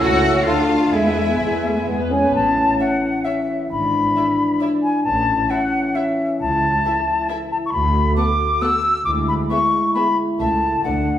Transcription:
0.00 0.41 C#2 medium
0.00 0.92 A3 medium
0.00 0.43 C#4 medium
0.00 0.12 C#4 medium
0.00 0.43 E4 medium
0.00 0.46 F#4 loud
0.00 0.12 A4 medium
0.00 0.48 E5 medium
0.00 0.45 F#5 medium
0.00 0.46 F#5 medium
0.00 0.47 F#5 medium
0.13 0.24 E4 medium
0.13 0.24 C#5 soft
0.23 0.35 C#4 medium
0.23 0.35 A4 medium
0.36 0.47 E4 medium
0.36 0.47 C#5 medium
0.46 0.88 D2 medium
0.46 0.93 A3 medium
0.46 0.93 D4 medium
0.46 0.93 F4 medium
0.46 0.58 F4 medium
0.46 0.58 A4 medium
0.46 0.92 F5 medium
0.46 0.93 F5 medium
0.46 0.92 A5 medium
0.59 0.70 D4 medium
0.59 0.69 F4 medium
0.70 0.82 F4 soft
0.70 0.82 A4 soft
0.82 0.94 D4 medium
0.82 0.94 F4 medium
0.93 1.35 E2 medium
0.93 1.05 G#3 medium
0.93 2.09 G#3 medium
0.93 1.36 G#3 medium
0.93 2.09 B3 medium
0.93 1.37 B3 medium
0.93 1.87 E4 medium
0.93 1.05 G#4 soft
0.93 1.85 E5 medium
0.93 1.86 E5 medium
0.93 1.88 E5 medium
0.93 2.08 G#5 medium
1.06 1.17 B3 soft
1.06 1.17 B4 soft
1.17 1.29 G#3 soft
1.17 1.29 G#4 soft
1.29 1.41 B3 medium
1.29 1.41 B4 soft
1.40 1.82 E2 medium
1.40 1.51 G#3 medium
1.40 1.52 G#3 soft
1.40 1.52 G#4 soft
1.53 1.64 B3 soft
1.53 1.64 B4 soft
1.65 1.76 G#3 soft
1.65 1.75 A3 medium
1.65 1.76 G#4 soft
1.77 1.88 B3 soft
1.77 1.88 B4 soft
1.87 2.29 E2 medium
1.87 1.99 G#3 medium
1.87 2.10 B3 medium
1.87 1.99 G#4 soft
2.00 2.11 B3 soft
2.00 2.11 B4 soft
2.11 2.23 G#3 soft
2.11 2.34 C#4 medium
2.11 2.23 G#4 soft
2.11 2.33 G#5 medium
2.23 2.35 B3 soft
2.23 2.34 B4 soft
2.33 2.72 A1 medium
2.33 2.72 A2 medium
2.33 5.01 E3 soft
2.33 3.67 C#4 soft
2.33 2.79 A5 medium
2.79 2.89 C#4 soft
2.79 2.88 C#5 soft
2.79 2.87 E5 soft
2.79 3.26 F#5 medium
3.24 3.34 C#4 soft
3.24 3.33 C#5 soft
3.24 3.70 E5 medium
3.24 3.33 E5 soft
3.71 4.09 G#1 medium
3.71 4.08 G#2 medium
3.71 5.03 D4 soft
3.71 4.59 B5 medium
4.16 4.25 E4 soft
4.16 4.25 D5 soft
4.16 4.24 E5 soft
4.61 4.70 E4 soft
4.61 4.69 D5 soft
4.61 4.69 E5 soft
4.82 5.03 G#5 medium
5.03 5.43 A1 medium
5.03 5.42 A2 medium
5.03 7.69 E3 soft
5.03 6.38 C#4 soft
5.03 5.51 A5 medium
5.49 5.58 E4 soft
5.49 5.58 C#5 soft
5.49 5.57 E5 soft
5.49 5.96 F#5 medium
5.95 6.03 E4 soft
5.95 6.03 C#5 soft
5.95 6.40 E5 medium
5.95 6.04 E5 soft
6.40 6.77 C#2 medium
6.40 6.78 C#2 medium
6.40 7.71 E4 soft
6.40 7.27 A5 medium
6.85 6.93 E4 soft
6.85 6.93 A4 soft
6.85 6.94 E5 soft
7.29 7.37 E4 medium
7.29 7.37 A4 soft
7.29 7.37 E5 medium
7.51 7.57 A5 medium
7.65 7.71 C#6 medium
7.72 8.09 D2 medium
7.72 8.10 D2 medium
7.72 8.88 A3 medium
7.72 8.88 F#4 soft
7.72 8.16 B5 medium
8.16 8.25 B3 soft
8.16 8.25 A4 medium
8.16 8.26 F#5 soft
8.16 8.63 D6 medium
8.61 8.69 B3 soft
8.61 8.69 A4 medium
8.61 8.70 F#5 medium
8.61 9.04 E6 medium
9.04 9.42 D2 medium
9.04 9.43 D2 medium
9.04 10.37 G#3 medium
9.04 10.81 E4 soft
9.04 9.10 D6 medium
9.28 9.34 B5 medium
9.50 9.58 B3 soft
9.50 9.59 G#4 soft
9.50 9.59 E5 medium
9.50 9.93 C#6 medium
9.94 10.03 B3 soft
9.94 10.03 G#4 medium
9.94 10.04 E5 soft
9.94 10.16 B5 medium
10.39 10.77 C#2 medium
10.39 10.47 A3 soft
10.39 11.19 A3 soft
10.39 10.48 A4 soft
10.39 10.48 E5 soft
10.39 10.81 A5 medium
10.83 11.19 D2 soft
10.83 11.19 D2 medium
10.83 10.93 A3 soft
10.83 11.19 D4 soft
10.83 10.93 A4 soft
10.83 10.93 D5 soft
10.83 11.19 F#5 medium

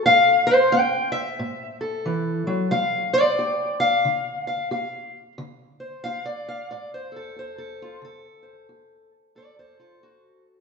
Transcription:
0.06 0.68 A2 medium
0.06 0.47 F5 loud
0.47 0.72 C5 medium
0.72 1.34 C#4 medium
0.72 1.11 G5 medium
1.12 1.79 E5 medium
1.39 2.00 A2 medium
1.81 2.71 A4 soft
2.06 2.46 E3 medium
2.47 2.72 F#3 medium
2.71 3.33 G3 medium
2.71 3.40 F5 medium
3.13 4.05 D5 medium
3.39 4.00 G4 medium
3.39 3.80 G5 medium
3.80 4.46 F5 loud
4.05 4.66 D3 medium
4.47 4.71 F5 medium
4.71 5.32 G4 medium
4.71 5.35 F5 soft
5.38 5.99 D3 medium
5.80 6.25 C5 soft
6.04 6.65 F#4 medium
6.04 6.26 F5 loud
6.26 6.70 D5 medium
6.49 6.70 F5 medium
6.71 7.32 A2 medium
6.71 6.92 D5 medium
6.94 7.37 C5 medium
7.12 7.16 A4 soft
7.16 7.57 A4 medium
7.36 7.80 F#4 medium
7.36 8.25 C5 medium
7.58 8.02 A4 medium
7.82 8.03 F4 medium
8.02 8.63 D3 medium
8.02 9.10 A4 loud
8.43 9.34 C5 soft
8.69 9.29 F#4 medium
9.35 9.96 A2 medium
9.35 9.57 A4 medium
9.35 9.58 D5 loud
9.59 9.78 A4 medium
9.59 10.46 C5 loud
9.79 10.01 F4 medium
9.79 10.61 A4 medium
10.03 10.61 F#4 medium

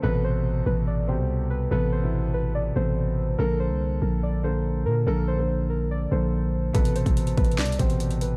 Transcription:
0.02 0.64 A1 loud
0.02 0.63 B2 loud
0.02 0.62 C3 loud
0.02 0.63 A4 loud
0.02 0.23 B4 loud
0.24 0.64 C5 medium
0.66 1.20 A1 loud
0.66 0.86 B4 medium
0.87 1.07 D5 medium
1.07 1.53 B2 medium
1.07 1.52 C3 medium
1.07 1.53 G4 medium
1.07 1.48 C5 medium
1.19 1.69 C2 loud
1.50 1.70 B4 medium
1.71 2.72 A1 loud
1.71 1.93 C3 medium
1.71 1.94 B3 loud
1.71 1.94 A4 loud
1.71 1.91 B4 loud
1.92 2.32 C5 medium
2.02 2.55 B2 medium
2.02 2.55 C3 medium
2.02 2.55 E4 medium
2.34 2.53 B4 medium
2.55 2.74 D5 medium
2.75 3.36 A1 loud
2.75 3.21 B2 medium
2.75 3.20 C3 medium
2.75 3.21 A4 medium
2.75 3.35 C5 medium
3.38 3.72 A#1 loud
3.38 3.98 D3 loud
3.38 3.99 A#3 medium
3.38 3.99 A4 loud
3.38 3.58 A#4 loud
3.60 3.99 C5 medium
3.71 4.00 C2 loud
4.02 4.87 A#1 loud
4.02 4.21 A#4 medium
4.23 4.42 D5 medium
4.43 4.88 D3 medium
4.43 4.88 A#3 medium
4.43 4.89 A4 medium
4.43 4.83 C5 medium
4.86 5.06 A#2 loud
4.86 5.05 A#4 medium
5.06 6.08 A#1 loud
5.06 5.29 D3 loud
5.06 5.29 A#3 medium
5.06 5.30 A4 loud
5.06 5.26 A#4 loud
5.28 5.67 C5 medium
5.38 5.90 D3 medium
5.38 5.90 A#3 medium
5.38 5.91 A4 medium
5.70 5.89 A#4 medium
5.91 6.10 D5 medium
6.11 6.72 A#1 loud
6.11 6.56 D3 medium
6.11 6.56 A#3 medium
6.11 6.57 A4 medium
6.11 6.71 C5 medium
6.73 7.05 A1 loud
6.73 7.34 B2 loud
6.73 7.33 C3 loud
6.73 7.34 A4 loud
6.73 6.94 B4 loud
6.73 kick loud
6.73 closed hi-hat medium
6.85 closed hi-hat medium
6.96 7.35 C5 medium
6.96 closed hi-hat medium
7.06 7.36 A1 loud
7.06 kick medium
7.06 closed hi-hat medium
7.17 closed hi-hat medium
7.27 closed hi-hat medium
7.37 7.60 A1 loud
7.37 7.57 B4 medium
7.37 kick loud
7.37 closed hi-hat soft
7.45 closed hi-hat soft
7.51 closed hi-hat medium
7.58 7.78 C2 loud
7.58 7.78 D5 medium
7.58 snare loud
7.58 clap medium
7.58 closed hi-hat medium
7.65 closed hi-hat medium
7.72 closed hi-hat medium
7.79 8.37 A1 loud
7.79 8.24 B2 medium
7.79 8.24 C3 medium
7.79 8.24 G4 medium
7.79 8.19 C5 medium
7.79 kick loud
7.79 closed hi-hat medium
7.90 closed hi-hat medium
8.00 closed hi-hat medium
8.11 closed hi-hat medium
8.21 8.37 B4 medium
8.21 closed hi-hat medium

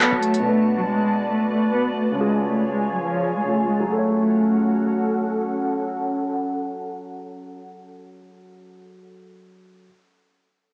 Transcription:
0.00 0.43 F#3 soft
0.00 0.18 B3 medium
0.00 0.44 F#4 soft
0.00 2.13 F#4 medium
0.00 0.45 A4 soft
0.00 0.41 C#5 medium
0.00 0.45 C#5 medium
0.00 2.13 A5 medium
0.00 clap loud
0.00 closed hi-hat medium
0.12 0.43 F#1 loud
0.22 0.39 A3 medium
0.22 closed hi-hat medium
0.34 closed hi-hat medium
0.40 2.11 B2 medium
0.40 2.12 B3 medium
0.44 0.75 A3 loud
0.44 2.14 D4 medium
0.44 2.15 B4 medium
0.44 2.15 D5 medium
0.49 2.16 B4 medium
0.77 0.85 F#3 medium
0.87 1.28 G#3 medium
1.30 1.47 A3 medium
1.52 1.69 A3 medium
1.74 1.91 B3 medium
1.95 2.12 A3 medium
2.11 3.41 C#3 medium
2.11 3.42 C#4 medium
2.17 2.48 G#3 medium
2.17 3.88 F4 medium
2.17 3.44 F4 medium
2.17 3.88 G#4 medium
2.17 3.45 G#4 medium
2.17 3.88 C#5 medium
2.17 3.88 G#5 medium
2.49 2.67 A3 medium
2.72 2.89 G#3 medium
2.93 3.01 F#3 medium
3.03 3.34 F3 medium
3.36 3.44 G#3 medium
3.45 3.88 C#3 soft
3.45 3.63 A3 medium
3.45 3.89 C#4 soft
3.45 3.90 F4 soft
3.49 3.91 G#4 medium
3.68 3.85 G#3 medium
3.80 8.13 F#3 medium
3.86 5.15 A3 medium
3.86 8.11 C#4 medium
3.86 8.19 F#4 medium
3.86 8.11 F#4 medium
3.86 8.11 A4 medium
3.86 8.11 F#5 medium
3.92 8.25 A4 medium
3.98 8.31 C#5 medium

